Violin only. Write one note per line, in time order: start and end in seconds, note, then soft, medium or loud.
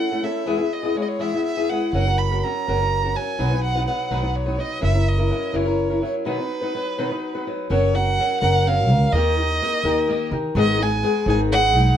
0.00 0.25 F#5 medium
0.24 0.75 E5 medium
0.73 0.99 D#5 medium
0.97 1.04 C#5 medium
1.02 1.10 D#5 medium
1.08 1.22 C#5 medium
1.21 1.44 E5 medium
1.45 1.71 E5 medium
1.70 1.93 F#5 medium
1.94 2.20 F#5 medium
2.18 2.45 B5 medium
2.43 3.17 A#5 medium
3.16 3.63 G#5 medium
3.64 3.85 F#5 medium
3.87 4.37 F#5 medium
4.36 4.62 C#5 medium
4.60 4.83 D#5 medium
4.84 5.10 E5 medium
5.09 5.58 D#5 medium
5.56 6.03 C#5 medium
6.05 6.15 C#5 medium
6.28 7.43 B4 medium
7.71 7.97 C#5 medium
7.95 8.40 F#5 medium
8.41 8.68 F#5 medium
8.67 9.14 F5 medium
9.12 10.32 D#5 loud
10.59 10.84 D#5 loud
10.82 11.28 G#5 medium
11.29 11.40 G#5 medium
11.52 11.96 F#5 loud